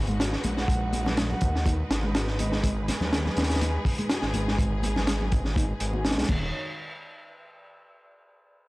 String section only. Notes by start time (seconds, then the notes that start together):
Already playing: G#3 D#4 F#4 B4
2.64 G#4
6.30 D#3 D#4 F#4 C#5